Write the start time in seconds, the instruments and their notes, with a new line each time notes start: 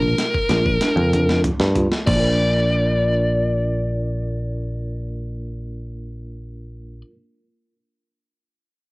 Already playing: picked electric bass A#1, tine electric piano D4, lead electric guitar A#4
0.02 high tom
0.18 snare, closed hi-hat
0.34 kick
0.49 picked electric bass A#1, tine electric piano F4, snare, closed hi-hat
0.66 kick
0.81 tine electric piano D4, snare, closed hi-hat
0.96 picked electric bass F2, mid tom
1.13 tine electric piano D4, closed hi-hat, mid tom
1.29 snare
1.44 closed hi-hat, floor tom
1.60 picked electric bass G2, snare
1.75 tine electric piano F4, closed hi-hat, floor tom
1.92 snare
2.07 picked electric bass A#1, tine electric piano A#3, lead electric guitar D5, kick, crash
2.12 tine electric piano D4 F4
2.20 tine electric piano A#4